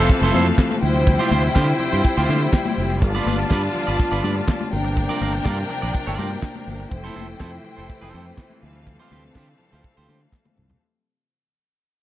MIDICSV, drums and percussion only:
0, 0, Header, 1, 2, 480
1, 0, Start_track
1, 0, Key_signature, -1, "minor"
1, 0, Tempo, 487409
1, 1052, Time_signature, 4, 2, 24, 8
1, 11839, End_track
2, 0, Start_track
2, 0, Title_t, "Drums"
2, 92, Note_on_c, 9, 42, 91
2, 93, Note_on_c, 9, 62, 40
2, 94, Note_on_c, 9, 36, 121
2, 190, Note_off_c, 9, 42, 0
2, 192, Note_off_c, 9, 62, 0
2, 193, Note_off_c, 9, 36, 0
2, 226, Note_on_c, 9, 42, 44
2, 324, Note_off_c, 9, 42, 0
2, 332, Note_on_c, 9, 62, 34
2, 332, Note_on_c, 9, 63, 86
2, 337, Note_on_c, 9, 42, 74
2, 431, Note_off_c, 9, 62, 0
2, 431, Note_off_c, 9, 63, 0
2, 436, Note_off_c, 9, 42, 0
2, 461, Note_on_c, 9, 42, 62
2, 559, Note_off_c, 9, 42, 0
2, 571, Note_on_c, 9, 36, 107
2, 571, Note_on_c, 9, 62, 36
2, 577, Note_on_c, 9, 39, 103
2, 578, Note_on_c, 9, 38, 111
2, 582, Note_off_c, 9, 39, 0
2, 582, Note_on_c, 9, 39, 100
2, 670, Note_off_c, 9, 36, 0
2, 670, Note_off_c, 9, 62, 0
2, 677, Note_off_c, 9, 38, 0
2, 680, Note_off_c, 9, 39, 0
2, 697, Note_on_c, 9, 63, 88
2, 707, Note_on_c, 9, 42, 49
2, 796, Note_off_c, 9, 63, 0
2, 805, Note_off_c, 9, 42, 0
2, 811, Note_on_c, 9, 64, 81
2, 823, Note_on_c, 9, 42, 57
2, 826, Note_on_c, 9, 38, 37
2, 909, Note_off_c, 9, 64, 0
2, 921, Note_off_c, 9, 42, 0
2, 924, Note_off_c, 9, 38, 0
2, 945, Note_on_c, 9, 42, 44
2, 1043, Note_off_c, 9, 42, 0
2, 1052, Note_on_c, 9, 42, 94
2, 1053, Note_on_c, 9, 36, 125
2, 1061, Note_on_c, 9, 64, 78
2, 1151, Note_off_c, 9, 42, 0
2, 1152, Note_off_c, 9, 36, 0
2, 1160, Note_off_c, 9, 64, 0
2, 1178, Note_on_c, 9, 63, 68
2, 1187, Note_on_c, 9, 42, 53
2, 1277, Note_off_c, 9, 63, 0
2, 1285, Note_off_c, 9, 42, 0
2, 1292, Note_on_c, 9, 42, 70
2, 1294, Note_on_c, 9, 62, 39
2, 1294, Note_on_c, 9, 63, 81
2, 1391, Note_off_c, 9, 42, 0
2, 1392, Note_off_c, 9, 62, 0
2, 1392, Note_off_c, 9, 63, 0
2, 1423, Note_on_c, 9, 42, 49
2, 1521, Note_off_c, 9, 42, 0
2, 1530, Note_on_c, 9, 62, 35
2, 1532, Note_on_c, 9, 39, 88
2, 1533, Note_on_c, 9, 36, 106
2, 1538, Note_on_c, 9, 38, 117
2, 1541, Note_off_c, 9, 39, 0
2, 1541, Note_on_c, 9, 39, 96
2, 1628, Note_off_c, 9, 62, 0
2, 1632, Note_off_c, 9, 36, 0
2, 1637, Note_off_c, 9, 38, 0
2, 1640, Note_off_c, 9, 39, 0
2, 1667, Note_on_c, 9, 42, 46
2, 1765, Note_off_c, 9, 42, 0
2, 1768, Note_on_c, 9, 62, 33
2, 1768, Note_on_c, 9, 64, 68
2, 1778, Note_on_c, 9, 42, 59
2, 1867, Note_off_c, 9, 62, 0
2, 1867, Note_off_c, 9, 64, 0
2, 1876, Note_off_c, 9, 42, 0
2, 1907, Note_on_c, 9, 42, 53
2, 2006, Note_off_c, 9, 42, 0
2, 2015, Note_on_c, 9, 42, 84
2, 2016, Note_on_c, 9, 36, 120
2, 2113, Note_off_c, 9, 42, 0
2, 2114, Note_off_c, 9, 36, 0
2, 2147, Note_on_c, 9, 42, 45
2, 2246, Note_off_c, 9, 42, 0
2, 2252, Note_on_c, 9, 42, 78
2, 2253, Note_on_c, 9, 62, 39
2, 2253, Note_on_c, 9, 63, 80
2, 2350, Note_off_c, 9, 42, 0
2, 2352, Note_off_c, 9, 62, 0
2, 2352, Note_off_c, 9, 63, 0
2, 2376, Note_on_c, 9, 42, 57
2, 2474, Note_off_c, 9, 42, 0
2, 2489, Note_on_c, 9, 36, 113
2, 2493, Note_on_c, 9, 62, 37
2, 2494, Note_on_c, 9, 39, 102
2, 2495, Note_on_c, 9, 38, 116
2, 2498, Note_off_c, 9, 39, 0
2, 2498, Note_on_c, 9, 39, 90
2, 2588, Note_off_c, 9, 36, 0
2, 2591, Note_off_c, 9, 62, 0
2, 2594, Note_off_c, 9, 38, 0
2, 2597, Note_off_c, 9, 39, 0
2, 2615, Note_on_c, 9, 63, 89
2, 2622, Note_on_c, 9, 42, 53
2, 2714, Note_off_c, 9, 63, 0
2, 2721, Note_off_c, 9, 42, 0
2, 2735, Note_on_c, 9, 64, 79
2, 2740, Note_on_c, 9, 46, 62
2, 2834, Note_off_c, 9, 64, 0
2, 2839, Note_off_c, 9, 46, 0
2, 2862, Note_on_c, 9, 42, 47
2, 2961, Note_off_c, 9, 42, 0
2, 2973, Note_on_c, 9, 36, 114
2, 2973, Note_on_c, 9, 42, 95
2, 2985, Note_on_c, 9, 64, 78
2, 3071, Note_off_c, 9, 42, 0
2, 3072, Note_off_c, 9, 36, 0
2, 3084, Note_off_c, 9, 64, 0
2, 3103, Note_on_c, 9, 42, 54
2, 3106, Note_on_c, 9, 63, 64
2, 3201, Note_off_c, 9, 42, 0
2, 3205, Note_off_c, 9, 63, 0
2, 3209, Note_on_c, 9, 42, 70
2, 3220, Note_on_c, 9, 62, 41
2, 3220, Note_on_c, 9, 63, 79
2, 3307, Note_off_c, 9, 42, 0
2, 3318, Note_off_c, 9, 62, 0
2, 3318, Note_off_c, 9, 63, 0
2, 3339, Note_on_c, 9, 42, 46
2, 3438, Note_off_c, 9, 42, 0
2, 3451, Note_on_c, 9, 39, 97
2, 3454, Note_on_c, 9, 36, 105
2, 3458, Note_on_c, 9, 38, 123
2, 3461, Note_off_c, 9, 39, 0
2, 3461, Note_on_c, 9, 39, 87
2, 3552, Note_off_c, 9, 36, 0
2, 3556, Note_off_c, 9, 38, 0
2, 3559, Note_off_c, 9, 39, 0
2, 3586, Note_on_c, 9, 42, 48
2, 3684, Note_off_c, 9, 42, 0
2, 3688, Note_on_c, 9, 62, 33
2, 3688, Note_on_c, 9, 64, 81
2, 3700, Note_on_c, 9, 42, 64
2, 3787, Note_off_c, 9, 62, 0
2, 3787, Note_off_c, 9, 64, 0
2, 3799, Note_off_c, 9, 42, 0
2, 3827, Note_on_c, 9, 42, 53
2, 3926, Note_off_c, 9, 42, 0
2, 3935, Note_on_c, 9, 36, 120
2, 3936, Note_on_c, 9, 62, 39
2, 3937, Note_on_c, 9, 42, 92
2, 4034, Note_off_c, 9, 36, 0
2, 4035, Note_off_c, 9, 42, 0
2, 4035, Note_off_c, 9, 62, 0
2, 4064, Note_on_c, 9, 42, 47
2, 4162, Note_off_c, 9, 42, 0
2, 4175, Note_on_c, 9, 42, 78
2, 4179, Note_on_c, 9, 63, 81
2, 4274, Note_off_c, 9, 42, 0
2, 4277, Note_off_c, 9, 63, 0
2, 4298, Note_on_c, 9, 42, 56
2, 4396, Note_off_c, 9, 42, 0
2, 4410, Note_on_c, 9, 36, 100
2, 4413, Note_on_c, 9, 39, 102
2, 4416, Note_on_c, 9, 38, 110
2, 4416, Note_on_c, 9, 62, 39
2, 4419, Note_off_c, 9, 39, 0
2, 4419, Note_on_c, 9, 39, 98
2, 4509, Note_off_c, 9, 36, 0
2, 4514, Note_off_c, 9, 38, 0
2, 4514, Note_off_c, 9, 62, 0
2, 4517, Note_off_c, 9, 39, 0
2, 4540, Note_on_c, 9, 63, 93
2, 4543, Note_on_c, 9, 42, 51
2, 4638, Note_off_c, 9, 63, 0
2, 4641, Note_off_c, 9, 42, 0
2, 4654, Note_on_c, 9, 62, 34
2, 4654, Note_on_c, 9, 64, 76
2, 4656, Note_on_c, 9, 42, 64
2, 4659, Note_on_c, 9, 38, 35
2, 4753, Note_off_c, 9, 62, 0
2, 4753, Note_off_c, 9, 64, 0
2, 4755, Note_off_c, 9, 42, 0
2, 4758, Note_off_c, 9, 38, 0
2, 4782, Note_on_c, 9, 42, 51
2, 4880, Note_off_c, 9, 42, 0
2, 4893, Note_on_c, 9, 36, 110
2, 4893, Note_on_c, 9, 42, 92
2, 4905, Note_on_c, 9, 64, 89
2, 4991, Note_off_c, 9, 42, 0
2, 4992, Note_off_c, 9, 36, 0
2, 5003, Note_off_c, 9, 64, 0
2, 5021, Note_on_c, 9, 63, 69
2, 5024, Note_on_c, 9, 42, 52
2, 5120, Note_off_c, 9, 63, 0
2, 5123, Note_off_c, 9, 42, 0
2, 5128, Note_on_c, 9, 42, 68
2, 5137, Note_on_c, 9, 62, 42
2, 5137, Note_on_c, 9, 63, 79
2, 5227, Note_off_c, 9, 42, 0
2, 5235, Note_off_c, 9, 62, 0
2, 5235, Note_off_c, 9, 63, 0
2, 5257, Note_on_c, 9, 42, 46
2, 5356, Note_off_c, 9, 42, 0
2, 5370, Note_on_c, 9, 39, 98
2, 5372, Note_on_c, 9, 36, 105
2, 5373, Note_on_c, 9, 38, 123
2, 5373, Note_on_c, 9, 62, 35
2, 5376, Note_off_c, 9, 39, 0
2, 5376, Note_on_c, 9, 39, 91
2, 5471, Note_off_c, 9, 36, 0
2, 5471, Note_off_c, 9, 62, 0
2, 5472, Note_off_c, 9, 38, 0
2, 5474, Note_off_c, 9, 39, 0
2, 5503, Note_on_c, 9, 42, 47
2, 5602, Note_off_c, 9, 42, 0
2, 5605, Note_on_c, 9, 62, 34
2, 5605, Note_on_c, 9, 64, 70
2, 5611, Note_on_c, 9, 42, 63
2, 5704, Note_off_c, 9, 62, 0
2, 5704, Note_off_c, 9, 64, 0
2, 5710, Note_off_c, 9, 42, 0
2, 5743, Note_on_c, 9, 42, 51
2, 5842, Note_off_c, 9, 42, 0
2, 5853, Note_on_c, 9, 62, 37
2, 5855, Note_on_c, 9, 42, 84
2, 5856, Note_on_c, 9, 36, 107
2, 5952, Note_off_c, 9, 62, 0
2, 5953, Note_off_c, 9, 42, 0
2, 5954, Note_off_c, 9, 36, 0
2, 5984, Note_on_c, 9, 42, 46
2, 6083, Note_off_c, 9, 42, 0
2, 6093, Note_on_c, 9, 42, 78
2, 6095, Note_on_c, 9, 62, 37
2, 6095, Note_on_c, 9, 63, 87
2, 6192, Note_off_c, 9, 42, 0
2, 6194, Note_off_c, 9, 62, 0
2, 6194, Note_off_c, 9, 63, 0
2, 6216, Note_on_c, 9, 42, 53
2, 6314, Note_off_c, 9, 42, 0
2, 6327, Note_on_c, 9, 38, 107
2, 6328, Note_on_c, 9, 36, 107
2, 6330, Note_on_c, 9, 39, 93
2, 6331, Note_off_c, 9, 39, 0
2, 6331, Note_on_c, 9, 39, 121
2, 6426, Note_off_c, 9, 36, 0
2, 6426, Note_off_c, 9, 38, 0
2, 6429, Note_off_c, 9, 39, 0
2, 6456, Note_on_c, 9, 63, 87
2, 6458, Note_on_c, 9, 42, 53
2, 6555, Note_off_c, 9, 63, 0
2, 6556, Note_off_c, 9, 42, 0
2, 6571, Note_on_c, 9, 62, 32
2, 6571, Note_on_c, 9, 64, 75
2, 6573, Note_on_c, 9, 42, 52
2, 6576, Note_on_c, 9, 38, 36
2, 6670, Note_off_c, 9, 62, 0
2, 6670, Note_off_c, 9, 64, 0
2, 6671, Note_off_c, 9, 42, 0
2, 6674, Note_off_c, 9, 38, 0
2, 6694, Note_on_c, 9, 42, 46
2, 6792, Note_off_c, 9, 42, 0
2, 6802, Note_on_c, 9, 42, 87
2, 6810, Note_on_c, 9, 36, 116
2, 6821, Note_on_c, 9, 62, 40
2, 6821, Note_on_c, 9, 64, 85
2, 6900, Note_off_c, 9, 42, 0
2, 6909, Note_off_c, 9, 36, 0
2, 6920, Note_off_c, 9, 62, 0
2, 6920, Note_off_c, 9, 64, 0
2, 6937, Note_on_c, 9, 42, 57
2, 6937, Note_on_c, 9, 63, 67
2, 7035, Note_off_c, 9, 63, 0
2, 7036, Note_off_c, 9, 42, 0
2, 7043, Note_on_c, 9, 42, 70
2, 7050, Note_on_c, 9, 62, 42
2, 7050, Note_on_c, 9, 63, 91
2, 7141, Note_off_c, 9, 42, 0
2, 7148, Note_off_c, 9, 62, 0
2, 7148, Note_off_c, 9, 63, 0
2, 7177, Note_on_c, 9, 42, 48
2, 7275, Note_off_c, 9, 42, 0
2, 7289, Note_on_c, 9, 38, 104
2, 7289, Note_on_c, 9, 39, 94
2, 7292, Note_off_c, 9, 39, 0
2, 7292, Note_on_c, 9, 36, 106
2, 7292, Note_on_c, 9, 39, 91
2, 7388, Note_off_c, 9, 38, 0
2, 7390, Note_off_c, 9, 36, 0
2, 7391, Note_off_c, 9, 39, 0
2, 7421, Note_on_c, 9, 42, 45
2, 7520, Note_off_c, 9, 42, 0
2, 7526, Note_on_c, 9, 62, 32
2, 7526, Note_on_c, 9, 64, 76
2, 7535, Note_on_c, 9, 42, 57
2, 7625, Note_off_c, 9, 62, 0
2, 7625, Note_off_c, 9, 64, 0
2, 7633, Note_off_c, 9, 42, 0
2, 7667, Note_on_c, 9, 42, 53
2, 7765, Note_off_c, 9, 42, 0
2, 7771, Note_on_c, 9, 62, 39
2, 7776, Note_on_c, 9, 36, 118
2, 7777, Note_on_c, 9, 42, 87
2, 7869, Note_off_c, 9, 62, 0
2, 7874, Note_off_c, 9, 36, 0
2, 7876, Note_off_c, 9, 42, 0
2, 7903, Note_on_c, 9, 42, 42
2, 8002, Note_off_c, 9, 42, 0
2, 8008, Note_on_c, 9, 62, 35
2, 8008, Note_on_c, 9, 63, 74
2, 8009, Note_on_c, 9, 42, 74
2, 8106, Note_off_c, 9, 62, 0
2, 8106, Note_off_c, 9, 63, 0
2, 8107, Note_off_c, 9, 42, 0
2, 8136, Note_on_c, 9, 42, 57
2, 8235, Note_off_c, 9, 42, 0
2, 8246, Note_on_c, 9, 62, 38
2, 8249, Note_on_c, 9, 36, 114
2, 8252, Note_on_c, 9, 38, 105
2, 8252, Note_on_c, 9, 39, 104
2, 8255, Note_off_c, 9, 39, 0
2, 8255, Note_on_c, 9, 39, 95
2, 8344, Note_off_c, 9, 62, 0
2, 8347, Note_off_c, 9, 36, 0
2, 8350, Note_off_c, 9, 38, 0
2, 8353, Note_off_c, 9, 39, 0
2, 8373, Note_on_c, 9, 63, 79
2, 8380, Note_on_c, 9, 42, 53
2, 8471, Note_off_c, 9, 63, 0
2, 8478, Note_off_c, 9, 42, 0
2, 8484, Note_on_c, 9, 62, 35
2, 8484, Note_on_c, 9, 64, 79
2, 8496, Note_on_c, 9, 42, 52
2, 8582, Note_off_c, 9, 62, 0
2, 8582, Note_off_c, 9, 64, 0
2, 8595, Note_off_c, 9, 42, 0
2, 8622, Note_on_c, 9, 42, 48
2, 8720, Note_off_c, 9, 42, 0
2, 8731, Note_on_c, 9, 42, 85
2, 8733, Note_on_c, 9, 36, 105
2, 8735, Note_on_c, 9, 62, 41
2, 8735, Note_on_c, 9, 64, 82
2, 8829, Note_off_c, 9, 42, 0
2, 8832, Note_off_c, 9, 36, 0
2, 8834, Note_off_c, 9, 62, 0
2, 8834, Note_off_c, 9, 64, 0
2, 8856, Note_on_c, 9, 63, 69
2, 8864, Note_on_c, 9, 42, 60
2, 8955, Note_off_c, 9, 63, 0
2, 8963, Note_off_c, 9, 42, 0
2, 8967, Note_on_c, 9, 42, 65
2, 8975, Note_on_c, 9, 62, 39
2, 8975, Note_on_c, 9, 63, 85
2, 9066, Note_off_c, 9, 42, 0
2, 9074, Note_off_c, 9, 62, 0
2, 9074, Note_off_c, 9, 63, 0
2, 9096, Note_on_c, 9, 42, 48
2, 9194, Note_off_c, 9, 42, 0
2, 9207, Note_on_c, 9, 39, 92
2, 9207, Note_on_c, 9, 62, 35
2, 9212, Note_on_c, 9, 36, 111
2, 9215, Note_on_c, 9, 38, 121
2, 9218, Note_off_c, 9, 39, 0
2, 9218, Note_on_c, 9, 39, 104
2, 9305, Note_off_c, 9, 62, 0
2, 9310, Note_off_c, 9, 36, 0
2, 9313, Note_off_c, 9, 38, 0
2, 9316, Note_off_c, 9, 39, 0
2, 9341, Note_on_c, 9, 42, 47
2, 9439, Note_off_c, 9, 42, 0
2, 9448, Note_on_c, 9, 62, 34
2, 9448, Note_on_c, 9, 64, 71
2, 9452, Note_on_c, 9, 42, 63
2, 9546, Note_off_c, 9, 62, 0
2, 9546, Note_off_c, 9, 64, 0
2, 9551, Note_off_c, 9, 42, 0
2, 9580, Note_on_c, 9, 42, 47
2, 9679, Note_off_c, 9, 42, 0
2, 9690, Note_on_c, 9, 42, 86
2, 9693, Note_on_c, 9, 36, 115
2, 9693, Note_on_c, 9, 62, 40
2, 9789, Note_off_c, 9, 42, 0
2, 9791, Note_off_c, 9, 36, 0
2, 9791, Note_off_c, 9, 62, 0
2, 9825, Note_on_c, 9, 42, 41
2, 9923, Note_off_c, 9, 42, 0
2, 9934, Note_on_c, 9, 62, 38
2, 9934, Note_on_c, 9, 63, 81
2, 9938, Note_on_c, 9, 42, 67
2, 10033, Note_off_c, 9, 62, 0
2, 10033, Note_off_c, 9, 63, 0
2, 10037, Note_off_c, 9, 42, 0
2, 10063, Note_on_c, 9, 42, 54
2, 10162, Note_off_c, 9, 42, 0
2, 10167, Note_on_c, 9, 62, 34
2, 10168, Note_on_c, 9, 36, 105
2, 10175, Note_on_c, 9, 39, 105
2, 10177, Note_on_c, 9, 38, 58
2, 10266, Note_off_c, 9, 62, 0
2, 10267, Note_off_c, 9, 36, 0
2, 10274, Note_off_c, 9, 39, 0
2, 10275, Note_off_c, 9, 38, 0
2, 10294, Note_on_c, 9, 63, 89
2, 10300, Note_on_c, 9, 48, 69
2, 10392, Note_off_c, 9, 63, 0
2, 10398, Note_off_c, 9, 48, 0
2, 10407, Note_on_c, 9, 64, 76
2, 10414, Note_on_c, 9, 45, 81
2, 10505, Note_off_c, 9, 64, 0
2, 10513, Note_off_c, 9, 45, 0
2, 10543, Note_on_c, 9, 43, 92
2, 10641, Note_off_c, 9, 43, 0
2, 11839, End_track
0, 0, End_of_file